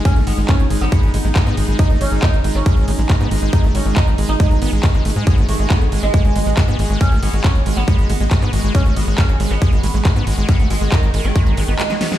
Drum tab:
RD |--x---x---x---x-|--x---x---x---x-|--x---x---x---x-|--x---x---x---x-|
HH |xxo-xxoxxxoxxxox|xxoxxxoxxxoxxxo-|xxoxxxoxxxoxxxo-|xxoxxxoxxxo-xxox|
CP |----x-------xx--|----x-------x---|----x-------xx--|----x-------x---|
SD |----------------|----------------|----------------|----------------|
BD |o---o---o---o---|o---o---o---o---|o---o---o---o---|o---o---o---o---|

RD |--x---x---x---x-|--x---x---x---x-|--x---x---x---x-|
HH |xxoxxxoxxxo-xxox|xxoxxxoxxxo-xxox|xxoxxxoxxxoxxxox|
CP |----x-------xx--|----x-------x---|----x-------x---|
SD |----------------|----------------|-------------ooo|
BD |o---o---o---o---|o---o---o---o---|o---o---o-------|